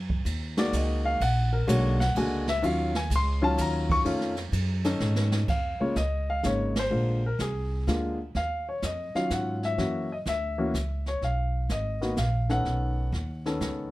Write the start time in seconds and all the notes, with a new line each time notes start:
Already playing: F#2
0.10 kick
0.25 D#2, kick, hi-hat pedal, ride
0.57 D#3 G#3 A#3 F#4 D5, snare, ride
0.73 C#2 D#5, kick, hi-hat pedal, ride
1.05 F5
1.21 A#1 F#5, kick, ride
1.53 A#4
1.67 B1 D3 G#3 A#3 F#4 C#5, kick, hi-hat pedal, ride
2.00 F#5, snare, ride
2.15 C#2 D3 G#3 A#3 F#4 G#5, kick, ride
2.47 E5, snare
2.62 D#2 D#3 F#3 C#4 F4 F5, kick, ride
2.95 G#5, snare
3.10 C#2, kick, hi-hat pedal, ride
3.16 C6
3.42 D#3 F#3 C#4 F4 A5
3.58 D#2 A#5, kick, hi-hat pedal, ride
3.90 C#6, kick, ride
4.05 F2 D#3 A3 C#4 F4, kick, ride
4.21 snare
4.36 snare, ride
4.52 F#2, kick, hi-hat pedal, ride
4.84 D#3 C#4 D#4 A4, snare, ride
5.00 G#2, snare
5.16 snare
5.32 snare
5.48 F5, brush sweep, kick, snare, crash
5.80 C#3 G#3 A#3 F4 C#5, muted upright bass stroke
5.96 C#2 D#5, kick, snare, hi-hat pedal
6.30 F5
6.43 G#1 C#3 G#3 A#3 D#4 C#5, kick, snare, hi-hat pedal
6.76 C5, snare, ride
6.91 A#1 D3 G#3 A#3 F4, brush sweep
7.26 A#4
7.39 C2 G#4, kick, snare, hi-hat pedal
7.87 D2 D3 G#3 A#3 F4, kick, snare, hi-hat pedal
8.35 D#2 F5, brush sweep, kick, snare
8.69 C#5
8.82 F2 D#5, kick, snare, hi-hat pedal
9.15 D#3 F#3 C#4 F4 F5, muted upright bass stroke, snare
9.30 G#2 F#5, kick, snare, hi-hat pedal
9.63 E5, snare
9.78 F#2 E3 A#3 C#4 F#4, brush sweep, kick, snare
10.12 D#5
10.26 D2 E5, kick, snare, hi-hat pedal
10.58 E3 A#3 C#4 F#4
10.74 C#2, kick, snare, hi-hat pedal
11.06 C#5, snare
11.22 B1 F5, brush sweep, kick, snare
11.69 G#1 D#5, kick, snare, hi-hat pedal
12.01 D#3 A#3 B3 F#4, snare
12.17 A#1 F5, kick, snare, hi-hat pedal
12.49 D#3 B3 C#4 A4 F#5, snare
12.65 B1, brush sweep, kick, snare
13.12 D#2, kick, snare
13.46 D#3 B3 C#4 A4, snare
13.61 C#2, kick, snare, hi-hat pedal